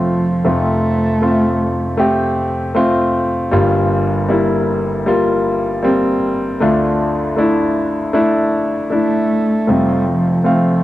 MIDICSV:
0, 0, Header, 1, 3, 480
1, 0, Start_track
1, 0, Key_signature, -1, "major"
1, 0, Tempo, 769231
1, 282, Time_signature, 4, 2, 24, 8
1, 6762, End_track
2, 0, Start_track
2, 0, Title_t, "Grand piano"
2, 0, Program_c, 0, 0
2, 0, Control_c, 0, 64, 127
2, 0, Note_on_c, 0, 29, 45
2, 0, Note_on_c, 0, 41, 45
2, 0, Note_on_c, 0, 57, 49
2, 0, Note_on_c, 0, 60, 47
2, 0, Note_on_c, 0, 65, 57
2, 0, Note_on_c, 0, 67, 52
2, 256, Note_off_c, 0, 57, 0
2, 258, Note_off_c, 0, 41, 0
2, 258, Note_off_c, 0, 60, 0
2, 259, Note_off_c, 0, 29, 0
2, 261, Note_off_c, 0, 65, 0
2, 278, Note_on_c, 0, 57, 51
2, 280, Note_on_c, 0, 41, 47
2, 281, Note_on_c, 0, 29, 44
2, 282, Note_on_c, 0, 60, 47
2, 287, Note_on_c, 0, 65, 57
2, 736, Note_off_c, 0, 57, 0
2, 738, Note_off_c, 0, 60, 0
2, 741, Note_off_c, 0, 65, 0
2, 759, Note_on_c, 0, 57, 48
2, 762, Note_on_c, 0, 60, 47
2, 767, Note_on_c, 0, 65, 56
2, 1216, Note_off_c, 0, 57, 0
2, 1218, Note_off_c, 0, 60, 0
2, 1220, Note_off_c, 0, 65, 0
2, 1232, Note_on_c, 0, 57, 65
2, 1240, Note_on_c, 0, 60, 59
2, 1245, Note_off_c, 0, 67, 0
2, 1245, Note_on_c, 0, 67, 72
2, 1693, Note_off_c, 0, 57, 0
2, 1697, Note_off_c, 0, 60, 0
2, 1700, Note_off_c, 0, 67, 0
2, 1714, Note_on_c, 0, 57, 62
2, 1720, Note_on_c, 0, 60, 59
2, 1725, Note_on_c, 0, 65, 75
2, 2174, Note_off_c, 0, 57, 0
2, 2176, Note_off_c, 0, 29, 0
2, 2176, Note_off_c, 0, 41, 0
2, 2177, Note_off_c, 0, 60, 0
2, 2179, Note_off_c, 0, 65, 0
2, 2193, Note_on_c, 0, 55, 66
2, 2197, Note_on_c, 0, 31, 60
2, 2199, Note_on_c, 0, 43, 55
2, 2201, Note_on_c, 0, 58, 60
2, 2202, Note_on_c, 0, 65, 77
2, 2210, Control_c, 0, 64, 0
2, 2318, Control_c, 0, 64, 127
2, 2653, Note_off_c, 0, 55, 0
2, 2657, Note_off_c, 0, 58, 0
2, 2658, Note_off_c, 0, 65, 0
2, 2674, Note_on_c, 0, 55, 57
2, 2677, Note_on_c, 0, 58, 60
2, 2683, Note_on_c, 0, 64, 65
2, 3134, Note_off_c, 0, 55, 0
2, 3135, Note_off_c, 0, 58, 0
2, 3138, Note_off_c, 0, 64, 0
2, 3159, Note_on_c, 0, 55, 66
2, 3163, Note_on_c, 0, 58, 61
2, 3169, Note_on_c, 0, 65, 74
2, 3616, Note_off_c, 0, 55, 0
2, 3618, Note_off_c, 0, 58, 0
2, 3621, Note_off_c, 0, 65, 0
2, 3635, Note_on_c, 0, 55, 67
2, 3641, Note_on_c, 0, 58, 62
2, 3647, Note_on_c, 0, 60, 72
2, 4094, Note_off_c, 0, 31, 0
2, 4094, Note_off_c, 0, 55, 0
2, 4096, Note_off_c, 0, 43, 0
2, 4097, Note_off_c, 0, 58, 0
2, 4100, Note_off_c, 0, 60, 0
2, 4120, Note_on_c, 0, 57, 63
2, 4125, Note_on_c, 0, 38, 60
2, 4125, Note_on_c, 0, 50, 56
2, 4126, Note_on_c, 0, 62, 60
2, 4129, Control_c, 0, 64, 0
2, 4132, Note_on_c, 0, 65, 67
2, 4256, Control_c, 0, 64, 127
2, 4577, Note_off_c, 0, 57, 0
2, 4580, Note_off_c, 0, 62, 0
2, 4583, Note_off_c, 0, 65, 0
2, 4595, Note_on_c, 0, 57, 55
2, 4602, Note_on_c, 0, 62, 54
2, 4608, Note_on_c, 0, 64, 67
2, 5054, Note_off_c, 0, 57, 0
2, 5058, Note_off_c, 0, 62, 0
2, 5061, Note_off_c, 0, 64, 0
2, 5075, Note_on_c, 0, 57, 62
2, 5077, Note_on_c, 0, 62, 59
2, 5082, Note_on_c, 0, 64, 67
2, 5534, Note_off_c, 0, 57, 0
2, 5536, Note_off_c, 0, 62, 0
2, 5538, Note_off_c, 0, 64, 0
2, 5555, Note_on_c, 0, 57, 48
2, 5560, Note_on_c, 0, 62, 44
2, 5566, Note_on_c, 0, 64, 54
2, 6014, Note_off_c, 0, 57, 0
2, 6017, Note_off_c, 0, 62, 0
2, 6018, Note_off_c, 0, 50, 0
2, 6019, Note_off_c, 0, 38, 0
2, 6020, Note_off_c, 0, 64, 0
2, 6035, Note_on_c, 0, 57, 49
2, 6041, Note_on_c, 0, 29, 45
2, 6041, Note_on_c, 0, 60, 46
2, 6042, Note_on_c, 0, 41, 46
2, 6046, Note_on_c, 0, 65, 52
2, 6051, Control_c, 0, 64, 0
2, 6147, Control_c, 0, 64, 127
2, 6495, Note_off_c, 0, 57, 0
2, 6498, Note_off_c, 0, 60, 0
2, 6500, Note_off_c, 0, 65, 0
2, 6517, Note_on_c, 0, 57, 50
2, 6520, Note_on_c, 0, 60, 45
2, 6528, Note_on_c, 0, 77, 54
2, 6762, Note_off_c, 0, 29, 0
2, 6762, Note_off_c, 0, 41, 0
2, 6762, Note_off_c, 0, 57, 0
2, 6762, Note_off_c, 0, 60, 0
2, 6762, Note_off_c, 0, 77, 0
2, 6762, End_track
3, 0, Start_track
3, 0, Title_t, "Cello"
3, 0, Program_c, 1, 42
3, 0, Note_on_c, 1, 53, 62
3, 304, Note_on_c, 1, 57, 70
3, 313, Note_off_c, 1, 53, 0
3, 1253, Note_off_c, 1, 57, 0
3, 5565, Note_on_c, 1, 57, 67
3, 6051, Note_on_c, 1, 55, 62
3, 6060, Note_off_c, 1, 57, 0
3, 6287, Note_on_c, 1, 53, 66
3, 6296, Note_off_c, 1, 55, 0
3, 6516, Note_off_c, 1, 53, 0
3, 6520, Note_on_c, 1, 53, 64
3, 6762, Note_off_c, 1, 53, 0
3, 6762, End_track
0, 0, End_of_file